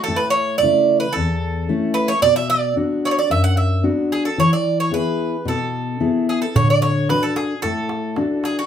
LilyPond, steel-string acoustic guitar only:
\new Staff \with { instrumentName = "Steel-string acoustic guitar" } { \time 4/4 \key a \major \tempo 4 = 111 a,4 <cis a e'>4 e,4 <a cis' e'>4 | b,4 <b d' fis'>4 fis,4 <b d' fis'>4 | e4 <b e' gis'>4 b,4 <b e' gis'>4 | d4 <d' fis' a'>4 a,4 <d' fis' a'>4 | }